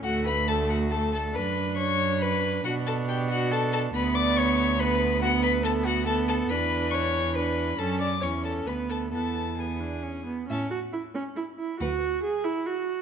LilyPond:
<<
  \new Staff \with { instrumentName = "Violin" } { \time 3/4 \key d \major \tempo 4 = 139 fis''8 b''8 a''8 fis''8 a''8 a''8 | b''4 cis'''4 b''4 | fis''8 a''8 g''8 fis''8 a''8 a''8 | b''8 d'''8 cis'''4 b''4 |
\key a \major fis''8 b''8 a''8 fis''8 a''8 a''8 | b''4 cis'''4 b''4 | a''8 d'''8 cis'''8 a''8 b''8 a''8 | a''4 gis''4. r8 |
a''8 r2 r8 | fis''8 r2 r8 | }
  \new Staff \with { instrumentName = "Violin" } { \time 3/4 \key d \major fis'8 b'8 a'8 fis'8 a'8 a'8 | b'4 cis''4 b'4 | fis'8 a'8 g'8 fis'8 a'8 a'8 | b'8 d''8 cis''4 b'4 |
\key a \major fis'8 b'8 a'8 fis'8 a'8 a'8 | b'4 cis''4 b'4 | a'8 d''8 cis''8 a'8 b'8 a'8 | a'4 gis'4. r8 |
e''8 r2 r8 | b'8 r2 r8 | }
  \new Staff \with { instrumentName = "Viola" } { \time 3/4 \key d \major a4 a4 a4 | d'2. | d'2. | b2 b4 |
\key a \major b4 b4 b4 | d'2 d'4 | cis'4 cis'4 b4 | b4 b8 d'8 cis'8 b8 |
cis'8 fis'8 e'8 cis'8 e'8 e'8 | fis'4 gis'8 e'8 fis'4 | }
  \new Staff \with { instrumentName = "Cello" } { \clef bass \time 3/4 \key d \major d,2. | fis,2. | b,2. | d,2.~ |
\key a \major d,2. | e,2. | fis,4 e,4 d,4 | e,2~ e,8 r8 |
a,4 r2 | d,4 r2 | }
>>